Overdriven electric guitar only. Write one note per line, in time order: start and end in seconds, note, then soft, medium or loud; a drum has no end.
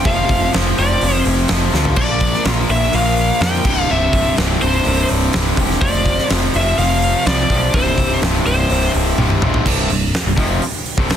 0.05 0.53 F2 loud
0.05 0.53 C3 loud
0.05 0.55 F3 loud
0.54 0.77 F2 medium
0.54 0.78 C3 medium
0.54 0.79 F3 medium
0.79 1.02 F2 medium
0.79 1.02 C3 loud
0.79 1.03 F3 loud
1.03 1.49 F2 loud
1.03 1.50 C3 loud
1.03 1.51 F3 loud
1.50 1.72 F2 medium
1.50 1.72 C3 medium
1.50 1.73 F3 medium
1.73 1.96 F2 medium
1.73 1.96 C3 medium
1.73 1.96 F3 medium
1.96 2.44 A#2 medium
1.96 2.45 F3 loud
1.96 2.45 A#3 loud
2.45 2.68 A#2 medium
2.45 2.68 F3 medium
2.45 2.69 A#3 loud
2.69 2.90 A#2 medium
2.69 2.92 F3 medium
2.69 2.92 A#3 loud
2.92 3.40 A#2 loud
2.92 3.41 F3 loud
2.92 3.42 A#3 loud
3.41 3.64 A#2 medium
3.41 3.65 F3 medium
3.41 3.65 A#3 loud
3.65 3.89 C2 medium
3.65 3.90 G2 medium
3.65 3.90 C3 medium
3.90 4.37 C2 medium
3.90 4.38 G2 medium
3.90 4.39 C3 loud
4.38 4.61 C2 medium
4.38 4.62 G2 loud
4.38 4.63 C3 medium
4.62 4.84 C2 medium
4.62 4.84 G2 loud
4.62 4.85 C3 loud
4.85 5.32 C2 loud
4.85 5.33 G2 loud
4.85 5.34 C3 loud
5.34 5.57 C2 medium
5.34 5.58 G2 medium
5.34 5.59 C3 loud
5.59 5.81 C2 medium
5.59 5.81 G2 medium
5.59 5.82 C3 loud
5.83 6.31 F2 loud
5.83 6.31 C3 loud
5.83 6.32 F3 loud
6.32 6.55 F2 medium
6.32 6.56 C3 medium
6.32 6.57 F3 loud
6.56 6.78 F2 medium
6.56 6.78 C3 medium
6.56 6.79 F3 loud
6.79 7.25 F2 loud
6.79 7.26 C3 loud
6.79 7.27 F3 loud
7.26 7.49 F2 medium
7.26 7.50 C3 medium
7.26 7.50 F3 loud
7.50 7.73 F2 medium
7.50 7.73 C3 medium
7.50 7.73 F3 loud
7.74 8.23 C2 loud
7.74 8.24 G2 loud
7.74 8.24 C3 loud
8.24 8.45 C2 medium
8.24 8.46 G2 medium
8.24 8.47 C3 medium
8.46 8.69 C2 medium
8.46 8.69 G2 loud
8.46 8.70 C3 loud
8.70 9.18 C2 loud
8.70 9.18 G2 loud
8.70 9.19 C3 loud
9.19 9.42 C2 medium
9.19 9.42 G2 loud
9.19 9.43 C3 loud
9.43 9.65 C2 medium
9.43 9.65 G2 medium
9.43 9.65 C3 loud
9.66 9.89 C2 medium
9.66 9.90 G2 loud
9.66 9.90 C3 loud
9.91 10.10 C2 medium
9.91 10.10 G2 medium
10.27 10.37 C2 medium
10.27 10.38 G2 medium
10.38 10.61 F2 loud
10.38 10.61 C3 loud
10.38 10.62 F3 loud
10.63 muted overdriven electric guitar stroke medium
10.97 11.17 C2 medium
10.97 11.17 G2 medium
10.97 11.17 C3 loud